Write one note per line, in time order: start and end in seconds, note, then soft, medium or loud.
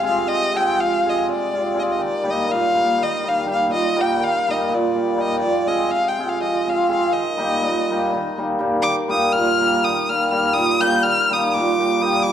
0.00 0.25 C3 medium
0.00 0.28 F3 medium
0.00 0.53 G#3 medium
0.00 0.16 C4 medium
0.00 0.17 F4 medium
0.04 0.17 G#4 medium
0.04 0.29 F5 medium
0.26 1.26 C3 medium
0.26 0.58 D#5 loud
0.54 1.04 G#3 medium
0.54 0.68 C4 medium
0.54 0.68 F4 medium
0.54 0.68 G#4 medium
0.54 0.81 G5 medium
0.76 1.27 F3 medium
0.76 1.11 F5 loud
1.05 1.52 G#3 medium
1.05 1.19 C4 medium
1.05 1.19 F4 medium
1.05 1.20 G#4 medium
1.09 1.29 D#5 medium
1.27 2.00 C3 medium
1.27 1.81 D5 medium
1.53 1.73 G#3 medium
1.53 1.67 C4 soft
1.53 1.67 F4 medium
1.53 1.67 G#4 medium
1.74 2.00 G#3 medium
1.74 1.88 C4 medium
1.74 1.89 F4 medium
1.74 1.89 G#4 medium
1.79 1.93 D5 medium
1.79 1.84 D#5 medium
1.91 2.03 D#5 medium
1.97 2.50 D#3 medium
2.02 2.31 D5 medium
2.23 2.74 G3 medium
2.23 2.39 A#3 medium
2.23 2.39 D#4 medium
2.23 2.39 G4 medium
2.30 2.53 D#5 medium
2.48 2.99 A#2 medium
2.48 3.04 F5 loud
2.75 2.99 G3 medium
2.75 2.90 A#3 medium
2.75 2.90 D#4 medium
2.75 2.91 G4 medium
2.98 3.72 D#3 medium
3.03 3.30 D#5 medium
3.23 3.44 G3 medium
3.23 3.38 A#3 soft
3.23 3.38 D#4 medium
3.23 3.39 G4 medium
3.28 3.48 F5 medium
3.46 3.95 G3 medium
3.46 3.60 A#3 medium
3.46 3.60 D#4 medium
3.46 3.60 G4 medium
3.51 3.69 F5 medium
3.68 4.21 A#2 medium
3.73 4.02 D#5 loud
3.96 4.21 G3 medium
3.96 4.11 A#3 medium
3.96 4.11 D#4 medium
3.96 4.11 G4 medium
4.01 4.25 G5 medium
4.19 4.71 D#3 medium
4.19 4.52 F5 loud
4.47 4.94 G3 medium
4.47 4.62 A#3 medium
4.47 4.63 D#4 medium
4.47 4.63 G4 medium
4.47 4.75 D#5 medium
4.69 5.44 A#2 medium
4.74 5.22 D5 medium
4.95 5.15 G3 medium
4.95 5.10 A#3 medium
4.95 5.10 D#4 medium
4.95 5.10 G4 medium
5.16 5.44 G3 medium
5.16 5.31 A#3 medium
5.16 5.31 D#4 medium
5.16 5.32 G4 medium
5.20 5.39 D#5 medium
5.39 5.93 F3 medium
5.39 5.69 D5 loud
5.66 6.17 G#3 medium
5.66 5.82 C4 medium
5.66 5.82 F4 medium
5.66 5.82 G#4 medium
5.66 5.92 D#5 medium
5.90 7.16 C3 medium
5.90 6.09 F5 loud
6.08 6.30 G5 medium
6.18 6.65 G#3 medium
6.18 6.33 C4 medium
6.18 6.34 F4 medium
6.18 6.34 G#4 medium
6.28 6.42 F5 medium
6.41 7.16 F3 medium
6.41 6.71 D#5 medium
6.67 6.87 G#3 soft
6.67 6.81 C4 medium
6.67 6.82 F4 medium
6.67 6.82 G#4 medium
6.67 6.90 F5 medium
6.88 7.16 G#3 medium
6.88 7.03 C4 medium
6.88 7.03 F4 medium
6.88 7.03 G#4 medium
6.88 7.14 F5 medium
7.10 7.64 D#3 medium
7.10 8.39 D#5 medium
7.37 7.89 G3 medium
7.37 7.53 A#3 medium
7.37 7.53 D#4 medium
7.37 7.54 G4 medium
7.62 8.13 A#2 medium
7.90 8.13 G3 medium
7.90 8.05 A#3 medium
7.90 8.05 D#4 medium
7.90 8.06 G4 medium
8.13 8.79 D#3 medium
8.37 8.58 G3 medium
8.37 8.52 A#3 medium
8.37 8.52 D#4 medium
8.37 8.53 G4 medium
8.59 8.87 G3 medium
8.59 8.74 A#3 medium
8.59 8.74 D#4 medium
8.59 8.74 G4 medium
8.80 9.35 D#3 medium
8.80 8.95 D6 loud
9.08 9.59 G3 medium
9.08 9.24 A#3 medium
9.08 9.24 D#4 medium
9.08 9.24 G4 medium
9.08 9.34 D#6 medium
9.32 9.84 A#2 medium
9.32 9.85 F6 loud
9.60 9.84 G3 medium
9.60 9.75 A#3 medium
9.60 9.76 D#4 medium
9.60 9.76 G4 medium
9.84 10.57 D#3 medium
9.84 10.11 D#6 medium
10.08 10.30 G3 medium
10.08 10.23 A#3 medium
10.08 10.23 D#4 soft
10.08 10.23 G4 medium
10.08 10.30 F6 loud
10.31 10.79 G3 medium
10.31 10.45 A#3 medium
10.31 10.45 D#4 medium
10.31 10.45 G4 medium
10.31 10.55 F6 loud
10.52 11.05 A#2 medium
10.52 10.82 D#6 loud
10.80 11.05 G3 medium
10.80 10.95 A#3 medium
10.80 10.95 D#4 medium
10.80 10.95 G4 medium
10.80 11.04 G6 loud
11.03 11.54 D#3 medium
11.03 11.34 F6 loud
11.30 11.77 G3 medium
11.30 11.45 A#3 medium
11.30 11.45 D#4 medium
11.30 11.46 G4 medium
11.30 11.54 D#6 medium
11.53 12.26 A#2 medium
11.53 12.03 D6 medium
11.78 11.99 G3 soft
11.78 11.92 A#3 medium
11.78 11.93 D#4 medium
11.78 11.93 G4 medium
12.01 12.26 G3 medium
12.01 12.14 A#3 medium
12.01 12.15 D#4 medium
12.01 12.15 G4 medium
12.01 12.24 D#6 loud
12.22 12.32 F3 medium
12.22 12.32 D6 loud